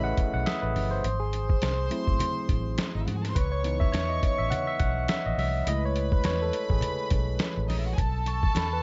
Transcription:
Already playing: A1 A3 C#4 E4 G#4 A4 B4 C#5 D#5 E5 B5
0.04 F#5
0.17 muted fingered electric bass stroke, kick, closed hi-hat, muted conga
0.34 B1 F#5
0.46 E5 D#6, snare, closed hi-hat, high conga
0.62 A1 B4
0.74 G1, open hi-hat, high conga
0.91 C5
1.04 G#1 C5 C6, closed hi-hat, muted conga
1.20 G#4
1.33 closed hi-hat, muted conga
1.50 kick
1.62 C2, snare, closed hi-hat, high conga
1.90 F#3 A3 C4 E4, closed hi-hat
2.08 G#1, kick
2.19 closed hi-hat, low conga
2.49 A1, kick, closed hi-hat, muted conga
2.78 snare, closed hi-hat, high conga
2.94 G#1 D#4 D#5
3.00 E4 E5
3.07 G#2 F#4 F#5, closed hi-hat, high conga
3.15 G#4 G#5
3.22 A4 A5, snare, closed hi-hat
3.28 C5 C6
3.35 C#2 B4 C#5 C#6, kick, closed hi-hat, muted conga
3.52 C#5
3.63 E3 B3 D#4, closed hi-hat, muted conga
3.80 E5, kick
3.92 E2 C#5, snare, closed hi-hat, high conga
4.09 D#5
4.23 kick, closed hi-hat
4.38 A1 E5
4.50 F#5, closed hi-hat, low conga
4.67 E5
4.80 B1 F#5, kick, closed hi-hat, muted conga
5.08 E5, snare, closed hi-hat, high conga
5.26 A1 D#5
5.38 C2 E5, open hi-hat, high conga
5.65 C#2 G#3 A3 E4 B4 D#5 B5, closed hi-hat, muted conga
5.85 C#5
5.96 closed hi-hat
6.12 B4, kick
6.24 E2 C#5, snare, closed hi-hat, high conga
6.42 A4
6.53 closed hi-hat
6.70 A1 G#4, kick
6.81 closed hi-hat, low conga
7.10 B1, kick, closed hi-hat, muted conga
7.39 snare, closed hi-hat, high conga
7.57 A1
7.68 A#1 D#4 D#5, open hi-hat, high conga
7.78 E4 E5
7.86 F#4 F#5
7.93 G#4 G#5
7.98 B1 A4 A5, kick, closed hi-hat, muted conga
8.26 C#6, closed hi-hat, muted conga
8.43 kick
8.55 E2 A4 B5, snare, closed hi-hat, high conga
8.73 B4

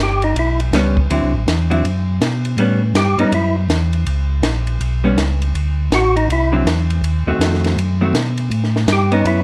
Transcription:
Already playing: G1
0.03 G4
0.22 D#4, ride
0.35 B1, ride
0.39 E4
0.60 ride
0.72 C#2 G3 B3 C#4, snare, hi-hat pedal, ride
0.97 kick
1.10 D2 D3 F#3 C4 E4, ride
1.22 C2
1.34 A1
1.47 E2, snare, hi-hat pedal, ride
1.70 D3 F#3 C4 E4, ride
1.84 F#2, ride
2.21 B2, snare, hi-hat pedal, ride
2.45 ride
2.57 A2 G3 B3 C#4, ride
2.94 G2 G4, snare, hi-hat pedal, ride
3.18 G2 G3 B3 C#4 D#4, ride
3.32 F#2 E4, ride
3.69 E2, snare, hi-hat pedal, ride
3.93 ride
4.06 C#2, ride
4.43 A#1, snare, hi-hat pedal, ride
4.67 ride
4.81 B1, ride
5.04 G3 B3 C#4
5.17 C#2, snare, hi-hat pedal, ride
5.42 ride
5.54 D2, ride
5.91 A1 F#4, snare, hi-hat pedal, ride
6.16 D#4, ride
6.28 C2, ride
6.32 E4
6.52 D3 F#3 C4 E4
6.65 E2, snare, hi-hat pedal, ride
6.90 ride
7.02 D#2, ride
7.26 D#2 D#3 A3 C4 F#4
7.39 F2, snare, hi-hat pedal, ride
7.54 snare
7.64 snare, ride
7.77 F#2, ride
8.01 D#3 A3 C4 F#4
8.13 B2, snare, hi-hat pedal, ride
8.38 ride
8.50 A2, ride
8.64 snare
8.76 snare
8.87 G2, snare, hi-hat pedal, ride
8.92 G4
9.12 B3 C#4 D#4, ride
9.24 F#2 E4, ride

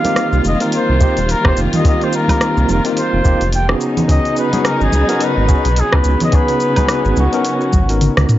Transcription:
Already playing: D#3 G3 A#3 F4 F5
0.04 A#3 C4 D#4 F4 G4, open hi-hat, high conga, shaker
0.16 cross-stick, open hi-hat, shaker
0.33 C2, shaker
0.44 F1 D#5, high conga, shaker
0.60 A#3 C4 D#4 F4 A#4, open hi-hat, shaker
0.72 C5, open hi-hat, shaker
0.89 C2
1.00 A#3 C4 D#4 F4 G4, kick, shaker
1.17 D#1, open hi-hat, shaker
1.29 A#4, open hi-hat, shaker
1.45 F1 A#3 C4 D#4 F4 G4 C5, kick, cross-stick, low woodblock
1.57 F1, shaker
1.73 D#5, open hi-hat, low conga, shaker
1.84 A#3 C4 D#4 F4 G4 D#5, kick, open hi-hat, shaker
2.01 C5, open hi-hat
2.13 A#4, shaker
2.28 A#3 C4 D#4 F4 G4, kick, open hi-hat, high conga, low woodblock, shaker
2.41 cross-stick, open hi-hat, shaker
2.57 C2, shaker
2.68 F1 A#4, high conga, shaker
2.84 A#3 C4 D#4 F4 A#4, open hi-hat, shaker
2.97 C5, open hi-hat, shaker
3.13 F1
3.24 F1 A#3 C4 D#4 F4 G4, kick, shaker
3.41 F1, open hi-hat, shaker
3.52 G5, open hi-hat, shaker
3.69 B3 C#4 D#4 F#4 G#4, cross-stick
3.81 C#3 F#3 B3 D#4, shaker
3.97 open hi-hat, low conga, shaker
4.08 C#2 B3 C#4 D#4 F#4 G#4 D#5, kick, open hi-hat, shaker
4.25 open hi-hat
4.36 B4, shaker
4.52 B3 C#4 D#4 F#4 G#4, open hi-hat, high conga, shaker
4.65 A#4, cross-stick, open hi-hat, shaker
4.81 G#1 G#4, shaker
4.92 C#2, high conga, shaker
5.08 B3 C#4 D#4 F#4 A#4, open hi-hat, shaker
5.21 B4, open hi-hat, shaker
5.37 G#1
5.48 B3 C#4 D#4 F#4 G#4, kick, shaker
5.65 B1, open hi-hat, shaker
5.76 G#4, open hi-hat, shaker
5.92 C#2 B3 C#4 D#4 F#4 G#4 B4, kick, cross-stick, low woodblock
6.04 C#2 C#4, shaker
6.20 D#5, open hi-hat, low conga, shaker
6.32 B3 C#4 D#4 F#4 G#4 B4, kick, open hi-hat, shaker
6.48 open hi-hat, shaker
6.60 shaker
6.76 B3 C#4 D#4 F#4 G#4, kick, open hi-hat, high conga, low woodblock, shaker
6.88 cross-stick, open hi-hat, shaker
7.05 G#1, shaker
7.16 C#2 F#4, high conga, shaker
7.32 B3 C#4 D#4 F#4 A#4, open hi-hat, shaker
7.45 open hi-hat, shaker
7.61 shaker
7.73 G#1, kick, high tom, shaker
7.89 B3 C#4 D#4 F#4 A#4, open hi-hat, shaker
8.01 open hi-hat, mid tom, shaker
8.17 C#2, cross-stick, open hi-hat, mid tom
8.29 mid tom, shaker

